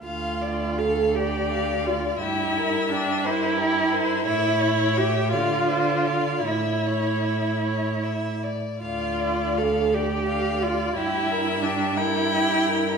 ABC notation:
X:1
M:6/8
L:1/16
Q:3/8=56
K:Dm
V:1 name="Violin"
z6 d6 | e6 c2 B2 c2 | ^c6 d2 =c2 d2 | ^c8- c z3 |
d6 d6 | e6 g6 |]
V:2 name="Violin"
f2 d2 f2 d2 f2 d2 | G2 B2 G2 B2 G2 B2 | e2 ^c2 e2 f2 d2 f2 | e2 ^c2 e2 c2 e2 d2 |
f2 d2 f2 d2 f2 d2 | G2 B2 G2 B2 G2 B2 |]
V:3 name="Viola"
F4 A2 G4 F2 | E4 D2 E6 | E4 G2 F6 | E8- E2 z2 |
F4 A2 G4 F2 | E4 D2 E6 |]
V:4 name="Cello" clef=bass
D,,12 | G,,12 | A,,6 D,6 | A,,8- A,,2 z2 |
D,,12 | G,,12 |]